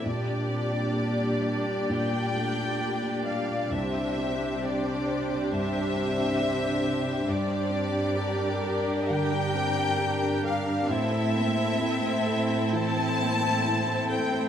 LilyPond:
<<
  \new Staff \with { instrumentName = "Violin section" } { \time 4/4 \key g \dorian \tempo 4 = 67 d''2 g''4. f''8 | e''4 d''4 e''2 | d''2 g''4. f''8 | e''2 a''4. g''8 | }
  \new Staff \with { instrumentName = "Violin section" } { \time 4/4 \key g \dorian << { d''1 | c''1~ | c''4 bes'2. | a'1 | } \\ { g'1 | g'1 | g'1 | e'1 | } >> }
  \new Staff \with { instrumentName = "Grand piano" } { \time 4/4 \key g \dorian bes,16 d'16 c'16 d'16 g'16 d'16 d''16 d'16 bes,16 bes16 a16 d'16 g'16 d'16 d''16 d'16 | c,16 d'16 c'16 d'16 g'8 c''16 d'16 g,16 d'16 c'16 d'16 g'16 d'16 c''16 d'16 | g,16 d'16 c'16 d'16 g'16 d'16 bes'16 d'16 d16 d'16 c'16 d'16 g'16 d'16 bes'16 d'16 | a,16 c'16 bes16 c'16 e'16 c'16 a'16 c'16 e16 c'16 bes16 c'16 e'16 c'16 a'16 c'16 | }
  \new Staff \with { instrumentName = "Viola section" } { \time 4/4 \key g \dorian <g d'>1 | <g d'>1 | <g d'>1 | c'1 | }
  \new Staff \with { instrumentName = "Cello section" } { \clef bass \time 4/4 \key g \dorian bes,1 | c1 | g,1 | a,1 | }
>>